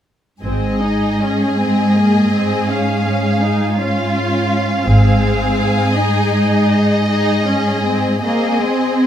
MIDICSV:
0, 0, Header, 1, 6, 480
1, 0, Start_track
1, 0, Key_signature, -4, "major"
1, 0, Tempo, 762389
1, 276, Time_signature, 6, 3, 24, 8
1, 1234, Tempo, 730816
1, 4594, Tempo, 766284
1, 5074, Tempo, 815217
1, 5796, End_track
2, 0, Start_track
2, 0, Title_t, "Violin section"
2, 0, Program_c, 0, 48
2, 277, Note_on_c, 0, 75, 28
2, 975, Note_off_c, 0, 75, 0
2, 998, Note_on_c, 0, 75, 33
2, 1698, Note_off_c, 0, 75, 0
2, 1719, Note_on_c, 0, 77, 35
2, 2419, Note_off_c, 0, 77, 0
2, 2427, Note_on_c, 0, 77, 43
2, 3834, Note_off_c, 0, 77, 0
2, 3868, Note_on_c, 0, 75, 45
2, 5299, Note_off_c, 0, 75, 0
2, 5306, Note_on_c, 0, 75, 36
2, 5796, Note_off_c, 0, 75, 0
2, 5796, End_track
3, 0, Start_track
3, 0, Title_t, "Violin section"
3, 0, Program_c, 1, 48
3, 275, Note_on_c, 1, 68, 33
3, 2403, Note_off_c, 1, 68, 0
3, 2432, Note_on_c, 1, 65, 39
3, 3145, Note_on_c, 1, 68, 40
3, 3148, Note_off_c, 1, 65, 0
3, 4588, Note_off_c, 1, 68, 0
3, 4596, Note_on_c, 1, 68, 40
3, 5296, Note_off_c, 1, 68, 0
3, 5309, Note_on_c, 1, 68, 35
3, 5796, Note_off_c, 1, 68, 0
3, 5796, End_track
4, 0, Start_track
4, 0, Title_t, "Viola section"
4, 0, Program_c, 2, 48
4, 271, Note_on_c, 2, 60, 33
4, 498, Note_off_c, 2, 60, 0
4, 512, Note_on_c, 2, 63, 29
4, 757, Note_off_c, 2, 63, 0
4, 759, Note_on_c, 2, 61, 31
4, 994, Note_on_c, 2, 60, 31
4, 999, Note_off_c, 2, 61, 0
4, 1223, Note_on_c, 2, 58, 32
4, 1227, Note_off_c, 2, 60, 0
4, 1468, Note_off_c, 2, 58, 0
4, 1469, Note_on_c, 2, 60, 36
4, 1705, Note_off_c, 2, 60, 0
4, 1710, Note_on_c, 2, 61, 39
4, 1937, Note_off_c, 2, 61, 0
4, 1945, Note_on_c, 2, 61, 34
4, 2181, Note_off_c, 2, 61, 0
4, 2183, Note_on_c, 2, 63, 35
4, 2427, Note_off_c, 2, 63, 0
4, 2428, Note_on_c, 2, 61, 33
4, 3145, Note_on_c, 2, 60, 43
4, 3146, Note_off_c, 2, 61, 0
4, 3846, Note_off_c, 2, 60, 0
4, 3858, Note_on_c, 2, 63, 40
4, 4589, Note_off_c, 2, 63, 0
4, 4596, Note_on_c, 2, 63, 42
4, 4828, Note_off_c, 2, 63, 0
4, 4829, Note_on_c, 2, 61, 37
4, 5073, Note_off_c, 2, 61, 0
4, 5075, Note_on_c, 2, 60, 37
4, 5301, Note_off_c, 2, 60, 0
4, 5308, Note_on_c, 2, 60, 33
4, 5796, Note_off_c, 2, 60, 0
4, 5796, End_track
5, 0, Start_track
5, 0, Title_t, "Cello section"
5, 0, Program_c, 3, 48
5, 274, Note_on_c, 3, 44, 33
5, 3120, Note_off_c, 3, 44, 0
5, 3147, Note_on_c, 3, 44, 42
5, 5286, Note_off_c, 3, 44, 0
5, 5306, Note_on_c, 3, 58, 49
5, 5531, Note_off_c, 3, 58, 0
5, 5548, Note_on_c, 3, 60, 44
5, 5796, Note_off_c, 3, 60, 0
5, 5796, End_track
6, 0, Start_track
6, 0, Title_t, "Double bass section"
6, 0, Program_c, 4, 48
6, 277, Note_on_c, 4, 32, 31
6, 735, Note_off_c, 4, 32, 0
6, 3149, Note_on_c, 4, 32, 42
6, 3595, Note_off_c, 4, 32, 0
6, 5796, End_track
0, 0, End_of_file